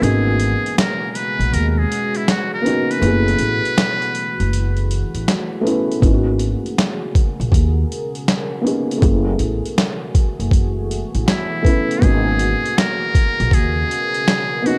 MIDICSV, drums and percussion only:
0, 0, Header, 1, 2, 480
1, 0, Start_track
1, 0, Key_signature, 5, "minor"
1, 0, Tempo, 750000
1, 12, Time_signature, 4, 2, 24, 8
1, 9460, End_track
2, 0, Start_track
2, 0, Title_t, "Drums"
2, 21, Note_on_c, 9, 42, 70
2, 85, Note_off_c, 9, 42, 0
2, 254, Note_on_c, 9, 42, 62
2, 318, Note_off_c, 9, 42, 0
2, 424, Note_on_c, 9, 42, 42
2, 488, Note_off_c, 9, 42, 0
2, 501, Note_on_c, 9, 38, 115
2, 503, Note_on_c, 9, 26, 95
2, 503, Note_on_c, 9, 42, 82
2, 565, Note_off_c, 9, 38, 0
2, 567, Note_off_c, 9, 26, 0
2, 567, Note_off_c, 9, 42, 0
2, 737, Note_on_c, 9, 42, 69
2, 801, Note_off_c, 9, 42, 0
2, 900, Note_on_c, 9, 42, 47
2, 964, Note_off_c, 9, 42, 0
2, 983, Note_on_c, 9, 42, 81
2, 1047, Note_off_c, 9, 42, 0
2, 1227, Note_on_c, 9, 42, 68
2, 1291, Note_off_c, 9, 42, 0
2, 1373, Note_on_c, 9, 42, 46
2, 1437, Note_off_c, 9, 42, 0
2, 1460, Note_on_c, 9, 38, 96
2, 1462, Note_on_c, 9, 26, 66
2, 1464, Note_on_c, 9, 42, 82
2, 1524, Note_off_c, 9, 38, 0
2, 1526, Note_off_c, 9, 26, 0
2, 1528, Note_off_c, 9, 42, 0
2, 1703, Note_on_c, 9, 42, 66
2, 1767, Note_off_c, 9, 42, 0
2, 1861, Note_on_c, 9, 42, 51
2, 1925, Note_off_c, 9, 42, 0
2, 1936, Note_on_c, 9, 42, 64
2, 2000, Note_off_c, 9, 42, 0
2, 2099, Note_on_c, 9, 42, 32
2, 2163, Note_off_c, 9, 42, 0
2, 2167, Note_on_c, 9, 42, 66
2, 2231, Note_off_c, 9, 42, 0
2, 2338, Note_on_c, 9, 42, 45
2, 2402, Note_off_c, 9, 42, 0
2, 2417, Note_on_c, 9, 38, 112
2, 2418, Note_on_c, 9, 42, 81
2, 2419, Note_on_c, 9, 26, 93
2, 2481, Note_off_c, 9, 38, 0
2, 2482, Note_off_c, 9, 42, 0
2, 2483, Note_off_c, 9, 26, 0
2, 2572, Note_on_c, 9, 42, 31
2, 2636, Note_off_c, 9, 42, 0
2, 2655, Note_on_c, 9, 42, 62
2, 2719, Note_off_c, 9, 42, 0
2, 2817, Note_on_c, 9, 42, 47
2, 2881, Note_off_c, 9, 42, 0
2, 2901, Note_on_c, 9, 42, 87
2, 2965, Note_off_c, 9, 42, 0
2, 3051, Note_on_c, 9, 42, 35
2, 3115, Note_off_c, 9, 42, 0
2, 3141, Note_on_c, 9, 42, 65
2, 3205, Note_off_c, 9, 42, 0
2, 3294, Note_on_c, 9, 42, 47
2, 3358, Note_off_c, 9, 42, 0
2, 3380, Note_on_c, 9, 38, 85
2, 3382, Note_on_c, 9, 26, 74
2, 3384, Note_on_c, 9, 42, 74
2, 3444, Note_off_c, 9, 38, 0
2, 3446, Note_off_c, 9, 26, 0
2, 3448, Note_off_c, 9, 42, 0
2, 3627, Note_on_c, 9, 42, 62
2, 3691, Note_off_c, 9, 42, 0
2, 3786, Note_on_c, 9, 42, 48
2, 3850, Note_off_c, 9, 42, 0
2, 3854, Note_on_c, 9, 36, 112
2, 3860, Note_on_c, 9, 42, 67
2, 3918, Note_off_c, 9, 36, 0
2, 3924, Note_off_c, 9, 42, 0
2, 4092, Note_on_c, 9, 42, 64
2, 4156, Note_off_c, 9, 42, 0
2, 4262, Note_on_c, 9, 42, 42
2, 4326, Note_off_c, 9, 42, 0
2, 4342, Note_on_c, 9, 38, 102
2, 4343, Note_on_c, 9, 42, 78
2, 4344, Note_on_c, 9, 26, 92
2, 4406, Note_off_c, 9, 38, 0
2, 4407, Note_off_c, 9, 42, 0
2, 4408, Note_off_c, 9, 26, 0
2, 4577, Note_on_c, 9, 36, 79
2, 4581, Note_on_c, 9, 42, 66
2, 4641, Note_off_c, 9, 36, 0
2, 4645, Note_off_c, 9, 42, 0
2, 4742, Note_on_c, 9, 42, 43
2, 4806, Note_off_c, 9, 42, 0
2, 4811, Note_on_c, 9, 36, 83
2, 4827, Note_on_c, 9, 42, 83
2, 4875, Note_off_c, 9, 36, 0
2, 4891, Note_off_c, 9, 42, 0
2, 5068, Note_on_c, 9, 42, 60
2, 5132, Note_off_c, 9, 42, 0
2, 5217, Note_on_c, 9, 42, 44
2, 5281, Note_off_c, 9, 42, 0
2, 5300, Note_on_c, 9, 38, 96
2, 5302, Note_on_c, 9, 26, 71
2, 5304, Note_on_c, 9, 42, 78
2, 5364, Note_off_c, 9, 38, 0
2, 5366, Note_off_c, 9, 26, 0
2, 5368, Note_off_c, 9, 42, 0
2, 5547, Note_on_c, 9, 42, 67
2, 5611, Note_off_c, 9, 42, 0
2, 5705, Note_on_c, 9, 42, 56
2, 5769, Note_off_c, 9, 42, 0
2, 5774, Note_on_c, 9, 36, 95
2, 5779, Note_on_c, 9, 42, 67
2, 5838, Note_off_c, 9, 36, 0
2, 5843, Note_off_c, 9, 42, 0
2, 6011, Note_on_c, 9, 42, 64
2, 6075, Note_off_c, 9, 42, 0
2, 6179, Note_on_c, 9, 42, 49
2, 6243, Note_off_c, 9, 42, 0
2, 6259, Note_on_c, 9, 38, 115
2, 6260, Note_on_c, 9, 26, 82
2, 6260, Note_on_c, 9, 42, 86
2, 6323, Note_off_c, 9, 38, 0
2, 6324, Note_off_c, 9, 26, 0
2, 6324, Note_off_c, 9, 42, 0
2, 6494, Note_on_c, 9, 36, 78
2, 6495, Note_on_c, 9, 42, 75
2, 6558, Note_off_c, 9, 36, 0
2, 6559, Note_off_c, 9, 42, 0
2, 6656, Note_on_c, 9, 42, 46
2, 6720, Note_off_c, 9, 42, 0
2, 6729, Note_on_c, 9, 36, 82
2, 6741, Note_on_c, 9, 42, 75
2, 6793, Note_off_c, 9, 36, 0
2, 6805, Note_off_c, 9, 42, 0
2, 6983, Note_on_c, 9, 42, 64
2, 7047, Note_off_c, 9, 42, 0
2, 7134, Note_on_c, 9, 42, 47
2, 7198, Note_off_c, 9, 42, 0
2, 7218, Note_on_c, 9, 38, 97
2, 7220, Note_on_c, 9, 26, 72
2, 7222, Note_on_c, 9, 42, 84
2, 7282, Note_off_c, 9, 38, 0
2, 7284, Note_off_c, 9, 26, 0
2, 7286, Note_off_c, 9, 42, 0
2, 7454, Note_on_c, 9, 36, 74
2, 7465, Note_on_c, 9, 42, 64
2, 7518, Note_off_c, 9, 36, 0
2, 7529, Note_off_c, 9, 42, 0
2, 7623, Note_on_c, 9, 42, 56
2, 7687, Note_off_c, 9, 42, 0
2, 7693, Note_on_c, 9, 36, 107
2, 7700, Note_on_c, 9, 42, 63
2, 7757, Note_off_c, 9, 36, 0
2, 7764, Note_off_c, 9, 42, 0
2, 7932, Note_on_c, 9, 42, 69
2, 7996, Note_off_c, 9, 42, 0
2, 8100, Note_on_c, 9, 42, 47
2, 8164, Note_off_c, 9, 42, 0
2, 8180, Note_on_c, 9, 38, 108
2, 8181, Note_on_c, 9, 42, 87
2, 8182, Note_on_c, 9, 26, 90
2, 8244, Note_off_c, 9, 38, 0
2, 8245, Note_off_c, 9, 42, 0
2, 8246, Note_off_c, 9, 26, 0
2, 8415, Note_on_c, 9, 36, 80
2, 8417, Note_on_c, 9, 42, 74
2, 8479, Note_off_c, 9, 36, 0
2, 8481, Note_off_c, 9, 42, 0
2, 8576, Note_on_c, 9, 42, 43
2, 8640, Note_off_c, 9, 42, 0
2, 8648, Note_on_c, 9, 36, 75
2, 8661, Note_on_c, 9, 42, 78
2, 8712, Note_off_c, 9, 36, 0
2, 8725, Note_off_c, 9, 42, 0
2, 8904, Note_on_c, 9, 42, 64
2, 8968, Note_off_c, 9, 42, 0
2, 9053, Note_on_c, 9, 42, 45
2, 9117, Note_off_c, 9, 42, 0
2, 9137, Note_on_c, 9, 38, 99
2, 9139, Note_on_c, 9, 26, 74
2, 9141, Note_on_c, 9, 42, 75
2, 9201, Note_off_c, 9, 38, 0
2, 9203, Note_off_c, 9, 26, 0
2, 9205, Note_off_c, 9, 42, 0
2, 9382, Note_on_c, 9, 42, 61
2, 9446, Note_off_c, 9, 42, 0
2, 9460, End_track
0, 0, End_of_file